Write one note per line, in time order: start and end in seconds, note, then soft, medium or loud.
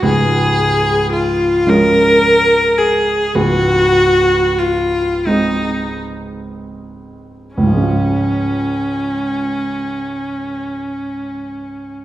0.02 3.30 C#1 medium
0.02 3.30 C#2 medium
0.02 1.10 G#4 loud
1.12 1.70 F4 loud
1.66 3.30 F3 medium
1.66 3.31 G#3 medium
1.66 3.31 C#4 medium
1.66 2.79 A#4 loud
2.77 3.37 G#4 loud
3.35 7.52 C#1 medium
3.35 7.52 C#2 medium
3.35 4.60 F#4 loud
4.58 5.28 F4 loud
5.26 7.52 G#3 medium
5.26 7.52 C4 medium
5.26 5.99 D#4 medium
5.26 7.52 D#4 medium
7.55 11.98 C#2 medium
7.55 11.95 C#4 medium
7.61 12.02 G#2 medium
7.67 12.05 F3 medium
7.72 12.05 G#3 medium
7.77 12.05 C#4 medium
7.82 12.05 F4 medium